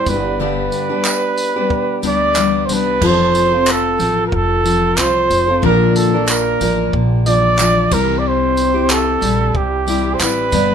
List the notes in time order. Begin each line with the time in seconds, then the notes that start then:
Already playing: C5
0.06 G1 G3 B3 D4 G4 B4, kick, tambourine
0.40 G2 D3 G3 B3 D4 G4 B4
0.72 tambourine
0.89 G3 B3 D4 G4
1.05 clap, tambourine
1.37 tambourine
1.56 G3 B3 D4 G4
1.70 kick
2.02 D2 G3 B3 D4 G4, tambourine
2.08 D5
2.36 G3 B3 D4 G4, clap, tambourine
2.66 C2 G3 C5, tambourine
2.70 B3 D4 G4 B4
3.01 F1 F3 C4 F4 A4, kick, crash
3.06 C5
3.35 tambourine
3.51 C4 F4 A4
3.66 clap, tambourine
3.72 A4
3.98 A1 F3 C4 F4 A4, tambourine
4.27 A#4
4.32 F1 A4, kick
4.64 F3 C4 F4 A4, tambourine
4.97 C2 F3 C4 F4 A4 C5, clap, tambourine
5.30 F1, tambourine
5.47 C4 F4 A4
5.62 A#1 A#2 D3 F3 A#3 D4 A#4, kick
5.96 A4, tambourine
6.13 F3 A#3 D4 A#4
6.28 A#4, clap, tambourine
6.60 A1 F3 A#3 D4 A#4, tambourine
6.93 A#1, kick
7.26 F3 A#3 D4 A#4 D5, tambourine
7.59 F3 A#3 D4 A#4, clap, tambourine
7.91 C2 C3 G3 C4 E4 G4 A#4, kick, tambourine, crash
8.19 D5
8.28 C5
8.57 tambourine
8.74 C4 E4 G4
8.90 A4, clap, tambourine
9.21 A#1 G3 C4 E4 G4, tambourine
9.55 C2 G4, kick
9.87 G3 C4 E4 G4, tambourine
10.15 C5
10.20 A1 G3 C4 E4 G4 B4, clap, tambourine
10.52 G1 G2 D3 G3 B3 D4 G4, kick, tambourine